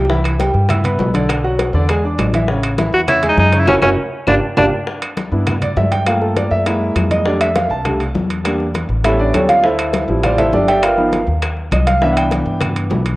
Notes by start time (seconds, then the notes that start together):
Already playing: C2
0.05 low bongo
0.09 E3 E4 E5, high bongo, high conga
0.24 high bongo, high timbale, claves
0.39 G3 G4 G5, high bongo, high conga, high timbale
0.54 G2, high bongo, high conga
0.69 E4 E5 E6, high bongo, high conga, low conga, high timbale, claves
0.84 B3 B4 B5, high conga, low conga, high timbale
0.99 B1, high bongo, low bongo, high conga, low timbale
1.14 D3 D4 D5, high bongo, high conga, high timbale
1.29 high bongo, high timbale, claves
1.44 F#3 F#4 F#5, high bongo, high conga
1.59 high bongo, high conga, high timbale
1.73 E2 D3 D4 D5, high bongo, high conga
1.89 G#3 G#4 G#5, high bongo, high conga, high timbale, claves
2.04 D4 D5 D6, high conga
2.18 A1, high bongo, low bongo, high conga, high timbale, low timbale, claves
2.33 E3 E4 E5, high bongo, high conga, high timbale
2.48 C#3 C#4 C#5, high bongo, high conga
2.63 high bongo, high timbale, claves
2.78 E3 E4 E5, high bongo, high conga, high timbale
2.93 E2 F#4, high bongo, high conga
3.08 C#4 E4 C#5 C#6, high bongo, high conga, low conga, high timbale, claves
3.23 G#3 G#4 G#5, high conga, low conga, high timbale
3.29 D#4
3.37 F#2 D#4, high bongo, low bongo, high conga
3.53 C#3 C#4 C#5, high bongo, high timbale
3.59 E4
3.67 F#1 C#4 E4 F#4, low bongo, low conga, high timbale, claves
3.82 F#1 C#4 E4 F#4, low bongo, low conga, high timbale, claves
4.27 G1 D4 F4 G4, low bongo, low conga, high timbale, claves
4.57 G1 D4 F4 G4, low bongo, low conga, high timbale, claves
4.87 high bongo, high conga
5.02 high bongo, high conga, high timbale, claves
5.17 high bongo, high conga, high timbale
5.31 G2 B3 D4 E4, high bongo, high conga
5.47 high bongo, high conga, low conga, high timbale, claves
5.62 D5, high conga, low conga, high timbale
5.76 G2 E5, high bongo, low bongo, high conga, low timbale
5.91 G5, high bongo, high conga, high timbale
6.06 A3 A#3 F4 F5, high bongo, high conga, high timbale, claves
6.21 A4, high bongo, high conga
6.36 D5, high bongo, high conga, high timbale
6.51 F#2 E5, high bongo, high conga
6.66 G#3 A#3 E4, high bongo, high conga, high timbale, claves
6.81 high conga
6.95 F2, high bongo, low bongo, high conga, high timbale, claves
7.11 D#5, high bongo, high conga, high timbale
7.25 G3 A3 D4 D5, high bongo, high conga
7.40 E5, high bongo, high conga, high timbale, claves
7.56 F5, high bongo, high conga, high timbale
7.70 C2 A5, high bongo, high conga
7.85 G3 A3 D4, high bongo, high conga, low conga, high timbale, claves
8.00 high conga, high timbale
8.15 E2, high bongo, low bongo, high conga
8.30 high bongo, high timbale
8.44 G3 A#3 D4, high bongo, high conga, high timbale, claves
8.60 high bongo, high conga
8.74 high bongo, high conga, high timbale
8.89 A1, high bongo, high conga
9.04 G3 B3 C#4 E4 A4 C#5 E5, high bongo, high conga, high timbale, claves
9.19 D4 D5, high conga
9.34 D2 C#4 G4 A4 C#5, high bongo, low bongo, high conga, high timbale, claves
9.49 F4 F5, high bongo, high conga, high timbale
9.64 E4 A4 C5 E5, high bongo, high conga
9.79 high bongo, high conga, high timbale, claves
9.93 high bongo, high conga, high timbale
10.08 A1 F3 G3 C4 E4, high bongo, high conga
10.23 F4 C5 D5 F5, high bongo, high conga, low conga, high timbale, claves
10.38 E4 A4 C5 E5, high conga, low conga, high timbale
10.53 G1 D4 G4 A4 D5, high bongo, low bongo, high conga
10.68 G4 D5 E5 G5, high bongo, high timbale
10.83 F4 A#4 B4 F5, high bongo, high timbale, claves
10.97 F3 B3 D#4, high bongo, high conga
11.12 high bongo, high conga, high timbale
11.27 D#2, high bongo, high conga
11.42 high bongo, high conga, high timbale, claves
11.57 high conga
11.71 C2 D#5, high bongo, low bongo, high conga, high timbale, claves
11.87 F5, high bongo, high conga, high timbale
12.01 E3 B3 D4 E5, high bongo, high conga
12.12 F#5, high bongo, high conga
12.17 G5, high timbale, claves
12.31 high bongo, high conga, high timbale
12.46 G2, high bongo, high conga
12.61 high bongo, high conga, low conga, high timbale, claves
12.76 high conga, high timbale
12.90 B1, high bongo, low bongo, high conga, low timbale
13.05 high bongo, high timbale